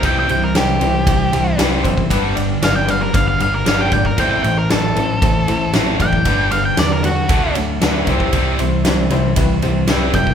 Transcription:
<<
  \new Staff \with { instrumentName = "Lead electric guitar" } { \time 4/4 \key c \lydian \tempo 4 = 116 g''16 g''16 g''16 bes'16 g'2 r4 | r4 f''16 g''16 f''16 bes'16 f''16 f''16 f''16 bes'16 f''16 g''16 g''16 bes'16 | g''16 g''16 g''16 bes'16 a'2 r8 g''8~ | g''8 f''16 g''16 d''16 bes'16 fis'4 r4. |
r2. r8 g''8 | }
  \new Staff \with { instrumentName = "Reed electric piano" } { \time 4/4 \key c \lydian <e' g' c''>8 <e' g' c''>8 <e' g' c''>8 <e' g' c''>8 <e' g' c''>8 <e' g' c'' a''>8 <e' g' b' g''>8 <e' g' c'' e''>8 | <d' g' b'>8 <d' g' d''>8 <d' g' b'>8 <d' g' b'>8 <d' g' b'>8 <d' g' b'>8 <d' g' d''>8 <d' g' d''>8 | <e' a' c''>8 <e' a' c''>8 <e' a' d''>8 <e' a' c''>8 <e' a' c''>8 <e' a' c''>8 <e' a' c''>8 <e' a' d''>8 | <d' g' b'>8 <d' g' b'>8 <d' g' d''>8 <d' g' a'>8 <d' fis' a'>8 <d' fis' a'>8 <d' fis' b'>8 <e' g' c''>8~ |
<e' g' c''>8 <e' g' c''>8 <e' g' c''>8 <e' g' c''>8 <e' g' b'>8 <e' g' c''>8 <e' g' b'>8 <e' g' a'>8 | }
  \new Staff \with { instrumentName = "Distorted electric guitar" } { \clef bass \time 4/4 \key c \lydian <c g c'>8 <c g>8 <c g>8 <c g>8 <c g>8 <c g>8 <c g c'>8 <c g>8 | <g, d g>8 <g, d>8 <g, d>8 <g, d>8 <g, d>8 <g, d>8 <g, d g>8 <g, d>8 | <a, e a>8 <a, e>8 <a, e>8 <a, e>8 <a, e>8 <a, e>8 <a, e a>8 <a, e>8 | <g, d g>8 <g, d>8 <g, d>8 <g, d>8 <d a d'>8 <d a>8 <d a d'>8 <c g c'>8 |
<c g c'>8 <c g>8 <c g>8 <c g>8 <c g>8 <c g>8 <c g c'>8 <c g>8 | }
  \new Staff \with { instrumentName = "Overdriven electric guitar" } { \clef bass \time 4/4 \key c \lydian <c e g>8 <c e>8 <c e>8 <c e>8 <c e>8 <c e>8 <c e g>8 <c e>8 | <g, d g>8 <g, d>8 <g, d>8 <g, d>8 <g, d>8 <g, d>8 <g, d g>8 <g, d>8 | <a, e c'>8 <a, e>8 <a, e>8 <a, e>8 <a, e>8 <a, e>8 <a, e c'>8 <a, e>8 | <g, d g>8 <g, d>8 <g, d>8 <g, d>8 <d fis a>8 <d fis>8 <d fis a>8 <c e g>8 |
<c e g>8 <c e>8 <c e>8 <c e>8 <c e>8 <c e>8 <c e g>8 <c e>8 | }
  \new Staff \with { instrumentName = "Picked electric bass" } { \clef bass \time 4/4 \key c \lydian c,8 c,8 c,8 c,8 c,8 c,8 c,8 fis,,8 | g,,4 g,,4 g,,8 g,,8 g,,8 aes,,8 | a,,8 a,,8 a,,8 a,,8 a,,8 a,,8 a,,8 fis,,8 | g,,4 e,4 d,8 d,8 d,8 c,8 |
c,8 c,8 c,8 c,8 c,8 c,8 c,8 fis,,8 | }
  \new DrumStaff \with { instrumentName = "Drums" } \drummode { \time 4/4 <bd cymr>8 cymr8 <cymr sn>8 cymr8 <bd cymr>8 cymr8 <cymr sn>8 <bd cymr>16 bd16 | <bd cymr>8 cymr8 <cymr sn>8 cymr8 <bd cymr>8 cymr8 <cymr sn>8 <bd cymr>16 bd16 | <bd cymr>8 cymr8 <cymr sn>8 cymr8 <bd cymr>8 cymr8 <cymr sn>8 <bd cymr>16 bd16 | <bd cymr>8 cymr8 <cymr sn>8 cymr8 <bd cymr>8 cymr8 <cymr sn>8 <bd cymr>16 bd16 |
<bd cymr>8 cymr8 <cymr sn>8 cymr8 <bd cymr>8 cymr8 <cymr sn>8 <bd cymr>16 bd16 | }
>>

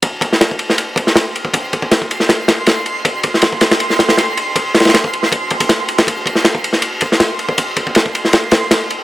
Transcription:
<<
  \new Staff \with { instrumentName = "Synth texture" } { \time 4/4 \key c \phrygian \tempo 4 = 159 c'''1~ | c'''1~ | c'''1~ | c'''1~ |
c'''1~ | c'''1 | }
  \new DrumStaff \with { instrumentName = "Drums" } \drummode { \time 4/4 <bd cymr>8 <bd cymr>16 sn16 <cymr sn>16 bd16 cymr16 sn16 cymr8 <bd cymr>16 sn16 <cymr sn>8 cymr16 bd16 | <bd cymr>8 <bd cymr>16 bd16 <cymr sn>16 bd16 cymr16 sn16 <cymr sn>8 <cymr sn>8 <cymr sn>8 cymr8 | <bd cymr>8 <bd cymr>16 sn16 <cymr sn>16 bd16 <cymr sn>16 <cymr sn>16 cymr16 sn16 <cymr sn>16 <cymr sn>16 <cymr sn>8 cymr8 | <bd cymr>8 <cymr sn>32 <cymr sn>32 <cymr sn>32 <cymr sn>32 <cymr sn>16 bd16 cymr16 sn16 <bd cymr>8 <bd cymr>16 <bd cymr>16 <cymr sn>8 cymr16 <cymr sn>16 |
<bd cymr>8 <bd cymr>16 sn16 <cymr sn>16 bd16 cymr16 sn16 cymr8 <bd cymr>16 sn16 <cymr sn>8 cymr16 bd16 | <bd cymr>8 <bd cymr>16 bd16 <cymr sn>16 bd16 cymr16 sn16 <cymr sn>8 <cymr sn>8 <cymr sn>8 cymr8 | }
>>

